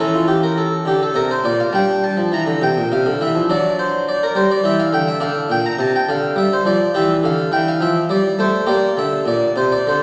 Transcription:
0.00 E3 C#4 A4
0.15 F4
0.28 G4
0.43 A#4
0.58 A4
0.85 D3 G4
1.03 A4
1.14 C3 A#4
1.31 C5
1.44 A#2 D5
1.60 F5
1.73 G3 D4 G5
2.04 A5
2.17 F3
2.32 E3 A#5
2.46 D3
2.62 C3 G5
2.78 A#2
2.92 C3 F5
3.06 D3
3.21 E3 E5
3.35 F3
3.49 F#3 D4 D5
3.79 C5
4.08 D5
4.23 A#4
4.35 G3 C5
4.51 D5
4.64 E3 E5
4.80 F5
4.93 D3 G5
5.08 E5
5.20 D3 D4 F5
5.50 A#2 G5
5.66 A#5
5.79 C3 A5
5.96 G5
6.09 D3 F5
6.36 G3 E5
6.53 C5
6.65 F3 D5
6.94 E3 G4 E5
7.23 D3 F5
7.52 E3 G5
7.68 F5
7.81 F3 E5
8.09 G3 D5
8.39 A3 C5
8.67 A#3 G4 D5
8.97 D3 E5
9.26 A#2 D5
9.56 C3 C5
9.72 D5
9.87 D3 C5

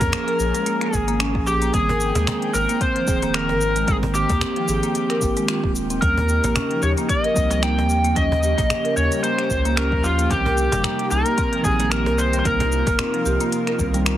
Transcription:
Already playing: F3 A#3 C#4 G#4 A#4
0.01 F2 A#3, cajon bass, kick, cajon slap, closed hi-hat, shaker
0.12 finger snap, cajon bass, closed hi-hat, shaker
0.28 A#4, closed hi-hat
0.39 A#1, shaker
0.54 G#3, cajon slap, closed hi-hat, shaker
0.66 A#3, cajon slap, closed hi-hat, shaker
0.81 finger snap, closed hi-hat
0.93 G#1 G#4, kick, shaker
1.08 A#3, closed hi-hat, shaker
1.20 C#4, finger snap, closed hi-hat, shaker
1.35 A#1 F3, kick
1.47 G4 G#4, shaker
1.62 A#3, closed hi-hat, shaker
1.73 G#1 D#3 G3 A#3 C4 G#4 G5, kick, closed hi-hat, shaker
1.89 A#4, cajon bass
2.00 shaker
2.15 D#2 G#3, cajon bass, cajon slap, closed hi-hat, shaker
2.27 A#3, finger snap, cajon bass, closed hi-hat, shaker
2.42 closed hi-hat
2.54 G#1 A#4, shaker
2.69 A#3, cajon slap, closed hi-hat, shaker
2.81 C4 C5, kick, closed hi-hat, shaker
2.96 F3, closed hi-hat
3.05 D#1 D#3 A#3 G#4, kick, shaker
3.10 C4
3.22 A#3, cajon slap, closed hi-hat, shaker
3.34 A#4, finger snap, closed hi-hat, shaker
3.49 G#1 A#4, cajon slap
3.61 shaker
3.76 G#3, closed hi-hat, shaker
3.87 G#1 D#3 G3 A#3 C4 G#4 G5, kick, closed hi-hat, shaker
4.03 cajon bass
4.15 G4, shaker
4.29 D#2 A#3, kick, cajon bass, cajon slap, closed hi-hat, shaker
4.41 C4, finger snap, cajon bass, closed hi-hat, shaker
4.56 F3, closed hi-hat
4.68 G#1 G#4, shaker
4.83 A#3, cajon slap, closed hi-hat, shaker
4.95 cajon slap, closed hi-hat, shaker
5.10 A#4, finger snap, closed hi-hat
5.20 G#1 D#3 A#3 C4, kick, shaker
5.37 G#3, closed hi-hat, shaker
5.48 F4, finger snap, closed hi-hat, shaker
5.64 D#1, kick
5.75 shaker
5.90 C4, closed hi-hat, shaker
6.01 D#2 C#3 F3 G3 A#3 C#4 D#4 G4 A#4, kick, closed hi-hat, shaker
6.18 cajon bass
6.29 shaker
6.44 A#1 A#3, cajon bass, cajon slap, closed hi-hat, shaker
6.56 C#4, finger snap, cajon bass, closed hi-hat, shaker
6.71 F3, closed hi-hat
6.82 D#2 G4 C#5, shaker
6.97 A#3, cajon slap, closed hi-hat, shaker
7.09 D#5, kick, closed hi-hat, shaker
7.24 A#4, closed hi-hat
7.34 C#2 F3 G3 A#3, kick, shaker
7.38 C4
7.50 G3, cajon slap, closed hi-hat, shaker
7.63 A#3 G5, finger snap, closed hi-hat, shaker
7.78 D#2, cajon slap
7.90 shaker
8.04 A#3, closed hi-hat, shaker
8.16 D#2 F3 G3 A#3 C#4 D#5, kick, closed hi-hat, shaker
8.31 F3, cajon bass
8.43 G4, shaker
8.58 A#1 A#3, kick, cajon bass, cajon slap, closed hi-hat, shaker
8.70 finger snap, cajon bass, closed hi-hat, shaker
8.85 A#4, closed hi-hat
8.97 D#2 C#5, shaker
9.12 G3, cajon slap, closed hi-hat, shaker
9.23 A#3 C5, cajon slap, closed hi-hat, shaker
9.38 finger snap, closed hi-hat
9.50 C#2, kick, shaker
9.65 A#3, closed hi-hat, shaker
9.77 C#4 A#4, finger snap, closed hi-hat, shaker
9.92 D#2 F3, kick
10.04 F4 G4, shaker
10.18 A#3, closed hi-hat, shaker
10.29 C2 C3 D#3 G3 A#3 C4 D#4 G4, kick, closed hi-hat, shaker
10.46 A#4, cajon bass
10.58 shaker
10.72 G1 G3, cajon bass, cajon slap, closed hi-hat, shaker
10.84 A#3, finger snap, cajon bass, closed hi-hat, shaker
10.99 closed hi-hat
11.11 C2 A#4, shaker
11.26 A#3, cajon slap, closed hi-hat, shaker
11.38 C4, kick, closed hi-hat, shaker
11.53 F3, closed hi-hat
11.63 A#1 D#3 G3 A#3 C4 G4 G#4, kick, shaker
11.80 A#3, cajon slap, closed hi-hat, shaker
11.92 A#4, finger snap, closed hi-hat, shaker
12.06 C2 A#4, cajon slap
12.18 C5, shaker
12.33 G3, closed hi-hat, shaker
12.39 C5
12.44 C2 D#3 G3 A#3 C4 F4 A#4, kick, closed hi-hat, shaker
12.60 cajon bass, closed hi-hat
12.72 shaker
12.87 G1 A#3, cajon bass, kick, cajon slap, closed hi-hat, shaker
12.99 C4, finger snap, cajon bass, closed hi-hat, shaker
13.14 F3, closed hi-hat
13.26 C2 G4, shaker
13.40 A#3, cajon slap, closed hi-hat, shaker
13.52 cajon slap, closed hi-hat, shaker
13.67 A#4, finger snap, closed hi-hat
13.78 C2 D#3 G3 A#3 C4, kick, shaker
13.92 D#3 G3 A#3 C4, closed hi-hat, shaker
14.06 A#3, finger snap, closed hi-hat, shaker

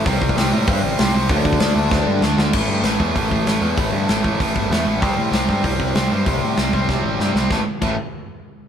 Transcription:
0.06 C2 C3 G3 C4, kick, open hi-hat
0.21 C2, kick
0.29 kick
0.36 C2 C3 G3 C4, snare, open hi-hat
0.53 A2 C3 G3 C4
0.67 G2 C3 G3 C4, kick, open hi-hat
0.84 A1
0.99 C2 C3 G3 C4, snare, open hi-hat
1.14 C2 C3 G3 C4
1.29 D2 D3 A3 D4, kick, open hi-hat
1.45 D2, kick
1.53 kick
1.60 D2 D3 A3 D4, snare, open hi-hat
1.75 D2 D3 A3 D4
1.91 D2 D3 A3 D4, kick, snare
2.07 G2
2.21 D2 D3 A3 D4, snare
2.37 D2 D3 A3 D4, snare
2.53 A1 A2 E3 A3, kick, crash
2.68 G2
2.83 A1 A2 E3 A3, snare, open hi-hat
3.00 E2 A2 E3 A3, kick
3.15 A1 A2 E3 A3, kick, open hi-hat
3.31 A1, kick
3.45 A1 A2 E3 A3, snare, open hi-hat
3.61 E2 A2 E3 A3
3.77 A1 A2 E3 A3, kick, open hi-hat
3.93 G2
4.07 A1 A2 E3 A3, snare, open hi-hat
4.23 A1 A2 E3 A3, kick
4.39 A1 A2 E3 A3, kick, open hi-hat
4.56 G1, kick
4.70 E2 A2 E3 A3, snare, open hi-hat
4.86 A1 A2 E3 A3
5.00 C2 C3 G3 C4, kick, open hi-hat
5.18 A2
5.31 C2 C3 G3 C4, snare, open hi-hat
5.47 G2 C3 G3 C4, kick
5.63 C2 C3 G3 C4, kick, open hi-hat
5.80 C2, kick
5.95 C2 C3 G3 C4, snare, open hi-hat
6.11 G2 C3 G3 C4
6.26 C2 C3 G3 C4, kick, open hi-hat
6.45 A2
6.57 C2 C3 G3 C4, snare, open hi-hat
6.73 C2 C3 G3 C4, kick
6.89 C2 C3 G3 C4, kick, snare
7.04 A1
7.19 G2 C3 G3 C4, snare
7.35 C2 C3 G3 C4, snare
7.50 A1 A2 E3 A3, kick, snare
7.81 A1 A2 E3 A3, kick, crash

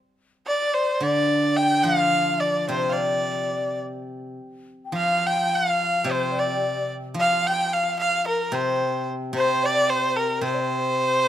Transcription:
0.47 D5
0.74 C5
1.01 D3 D5
1.05 D5
1.57 G5
1.83 F3 F5
2.40 D5
2.69 C3 C5
2.73 C5
2.90 D5 F5
2.98 D5
3.55 D5
4.85 G5
4.92 F3 F5
4.96 F5
5.27 G5
5.52 F5
6.04 C3 C5
6.12 C5
6.32 D5
6.39 D5
7.14 F3 F5
7.20 F5
7.46 G5
7.73 F5
7.99 F5
8.26 A#4
8.52 C3 C5
9.33 C3 C5
9.64 D5
9.90 C5
10.16 A#4
10.41 C3 C5
10.46 C5
10.55 D5
10.60 C5

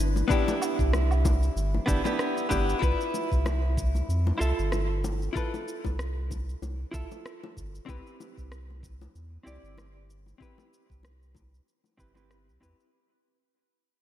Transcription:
Already playing: G1 B3 D4 E4 B4
0.16 high bongo, cabasa
0.28 B3 D4 E4 G4, kick, cabasa
0.48 high bongo, cabasa
0.62 cabasa, low woodblock
0.79 C2, kick, cabasa
0.93 cross-stick, high bongo, cabasa
1.11 cabasa, low woodblock
1.25 kick, high bongo, cabasa
1.43 cabasa
1.56 G1, cabasa
1.74 high bongo
1.86 G1 B3 D4 E4 G4, kick, cabasa
2.04 B3 D4 E4 G4, high bongo, cabasa
2.19 cross-stick, cabasa
2.37 cabasa
2.49 G1 B3 D4 E4 G4, kick, high bongo, cabasa
2.69 cabasa
2.79 C2 E4 F4 B4, kick, cabasa
3.01 cabasa
3.14 high bongo, cabasa
3.32 C2, kick, cabasa
3.46 cross-stick, high bongo, cabasa
3.77 kick, cabasa
3.95 high bongo, cabasa
4.09 F2, cabasa
4.27 high bongo
4.38 C2 E4 F4 A4 E5, cabasa
4.59 G1, cabasa
4.72 cross-stick, high bongo, cabasa
5.04 high bongo, cabasa
5.22 cabasa
5.33 E4 F4 A4, kick, cabasa
5.37 B4
5.54 high bongo, cabasa
5.68 cabasa
5.85 C2, kick, high bongo, cabasa
5.99 cross-stick, cabasa
6.31 kick, high bongo, cabasa
6.49 cabasa
6.62 C2, high bongo, cabasa
6.91 C2 E4 F4 A4 E5, kick, cabasa
7.12 high bongo, cabasa
7.26 cross-stick, cabasa
7.44 high bongo
7.57 G1, kick, cabasa
7.75 cabasa
7.86 C2 C4 E4 G4 B4, kick, high bongo, cabasa
8.07 cabasa
8.20 high bongo, cabasa
8.38 C2, kick, cabasa
8.52 cross-stick, cabasa
8.70 high bongo
8.83 kick, cabasa
9.02 high bongo, cabasa
9.15 E2, cabasa
9.43 C2 C4 E4 G4 D5, high bongo, cabasa
9.63 G1, cabasa
9.78 cross-stick, high bongo, cabasa
10.10 cabasa
10.26 high bongo, cabasa
10.38 C4 E4 G4 B4, kick
10.42 cabasa
10.58 high bongo, cabasa
10.74 cabasa
10.90 C2, kick, cabasa
11.03 cross-stick, high bongo, cabasa
11.22 cabasa
11.35 kick, high bongo, cabasa
11.54 cabasa
11.68 cabasa
11.84 high bongo, cabasa
11.97 G1 C4 E4 G4 B4, kick, cabasa
12.14 C4 E4 G4 B4, high bongo, cabasa
12.31 cross-stick, cabasa
12.49 C2, cabasa
12.61 E2 C4 E4 G4 B4, kick, high bongo, cabasa
12.80 cabasa

